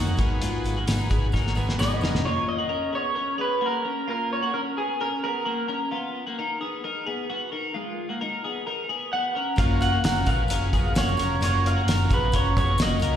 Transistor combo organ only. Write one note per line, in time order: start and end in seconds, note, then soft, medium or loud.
0.00 0.19 D#4 medium
0.00 0.18 F#4 medium
0.00 0.20 C#5 loud
0.19 0.79 F#4 medium
0.19 0.79 G#4 medium
0.19 0.79 B4 loud
0.87 1.27 F#4 medium
0.87 1.27 G#4 medium
0.87 1.28 B4 medium
1.33 1.53 F#4 medium
1.33 1.54 G#4 medium
1.33 1.54 C#5 loud
1.56 1.76 F#4 medium
1.56 1.76 G#4 medium
1.56 1.76 B4 medium
1.80 2.19 F#4 loud
1.80 2.20 G#4 medium
1.80 2.20 B4 loud
9.59 9.98 C#4 loud
9.59 9.99 F4 loud
9.59 9.99 F#4 medium
9.59 9.99 A#4 loud
10.03 10.44 C#4 medium
10.03 10.44 F4 medium
10.03 10.44 F#4 medium
10.03 10.44 A#4 medium
10.49 10.70 C#4 medium
10.49 10.70 F4 medium
10.49 10.70 F#4 medium
10.49 10.70 G#4 medium
10.73 10.93 C#4 medium
10.73 10.93 F4 medium
10.73 10.94 F#4 medium
10.73 10.94 A#4 medium
10.95 11.36 C#4 medium
10.95 11.36 F4 medium
10.95 11.36 F#4 medium
10.95 11.36 A#4 medium
11.41 11.82 C#4 loud
11.41 11.82 F4 loud
11.41 11.82 F#4 medium
11.41 11.82 A#4 loud
11.87 12.27 C#4 medium
11.87 12.28 F4 medium
11.87 12.28 F#4 medium
11.87 12.28 A#4 medium
12.34 12.54 C#4 medium
12.34 12.54 F4 medium
12.34 12.54 F#4 medium
12.34 12.54 A#4 medium
12.57 12.77 C#4 medium
12.57 12.77 F4 medium
12.57 12.77 F#4 medium
12.57 12.77 A#4 medium
12.79 13.16 C#4 medium
12.79 13.16 F4 medium
12.79 13.16 F#4 medium
12.79 13.16 A#4 loud